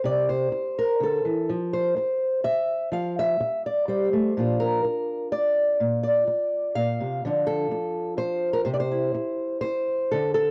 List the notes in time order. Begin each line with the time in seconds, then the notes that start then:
0.04 C3 D5
0.29 C5
0.52 muted steel-string acoustic guitar stroke
0.79 A#4
1.00 D3 A4
1.25 E3
1.49 F3
1.73 C5
1.97 muted steel-string acoustic guitar stroke
2.44 E5, muted steel-string acoustic guitar stroke
2.92 F3 F5
3.19 E5
3.40 muted steel-string acoustic guitar stroke
3.66 D5
3.88 G3 C5
4.13 A3
4.37 A#2 F3 D4 F4 C5
4.60 A#4
4.84 muted steel-string acoustic guitar stroke
5.32 D5, muted steel-string acoustic guitar stroke
5.80 A#2
6.03 D5
6.27 muted steel-string acoustic guitar stroke
6.75 A#2 F5
7.01 C3
7.25 D3 F3 D4 F4
7.47 A4
7.71 muted steel-string acoustic guitar stroke
8.17 C5, muted steel-string acoustic guitar stroke
8.53 A#4
8.65 C3 C5
8.74 D5
8.80 C5
8.91 E4
9.14 muted steel-string acoustic guitar stroke
9.61 C5, muted steel-string acoustic guitar stroke
10.12 D3 A4
10.34 A4